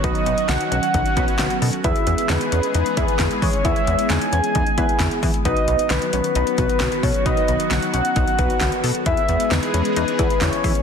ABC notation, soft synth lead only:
X:1
M:4/4
L:1/8
Q:1/4=133
K:B
V:1 name="Soft synth lead"
d2 f f4 z | e2 B2 B3 c | e2 g g4 z | d2 B2 B3 c |
d2 f f4 z | e2 B2 B2 c2 |]